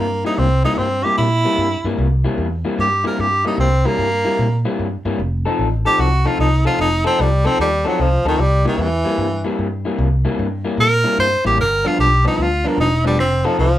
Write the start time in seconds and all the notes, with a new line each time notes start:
0.00 G2 A#3
0.25 C3 G3 A#3 D#4 E4
0.38 C2 C4
0.65 C3 G3 A#3 D#4 E4
0.78 G2 C4
1.04 C3 G3 A#3 E4 G4
1.18 A#2 E4
1.45 C3 G3 A#3 E4
1.58 G2
1.84 G2 C3 G3 A#3 E4
1.98 C2
2.24 C3 G3 A#3 E4
2.38 E2
2.65 C3 G3 A#3 E4
2.78 G2 G4
3.04 C3 G3 A#3 E4 A#4
3.19 G2 G4
3.45 C3 G3 A#3 D#4 E4
3.58 C2 C4
3.85 C3 G3 A#3 E4
3.99 G2
4.25 C3 G3 A#3 E4
4.39 A#2
4.65 C3 G3 A#3 E4
4.79 G2
5.05 G2 C3 G3 A#3 E4
5.19 F1
5.46 F3 C4 D#4 A4
5.59 A1
5.85 F3 C4 D#4 G4 A4
5.98 C2 F#4
6.25 F3 C4 D#4 F4 A4
6.39 C2 D#4
6.65 F3 C4 D#4 F4 A4
6.79 F1 D#4
7.04 F3 C4 D#4 A4
7.19 C2 G3
7.45 F3 C4 D#4 A4
7.59 D#2 G3
7.85 F3 F#3 C4 D#4 A4
7.99 C2 F3
8.24 D2 F3 C4 D#4 A4
8.28 D#3
8.38 C2 G3
8.65 C3 D#3 G3 A#3 E4
8.78 E2 E3
9.05 C3 G3 A#3 E4
9.18 G2
9.45 C3 G3 A#3 E4
9.59 G2
9.85 C3 G3 A#3 E4
9.98 C2
10.25 C3 G3 A#3 E4
10.39 G2
10.65 C3 G3 A#3 E4
10.78 A#2 A#4
11.04 C3 G3 A#3 E4
11.18 G2 C5
11.45 A1 C3 G3 A#3 E4 G4
11.58 G1 A#4
11.85 G2 F3 B3 D4 F4
11.99 B1 G4
12.25 G2 F3 B3 D4 D#4
12.38 D2 F4
12.64 G2 F3 A#3 B3 D4
12.78 E1 D#4
13.04 G2 F3 G3 B3 D4
13.18 F1 C4
13.45 F3 C4 D#4 A4
13.59 C2 F3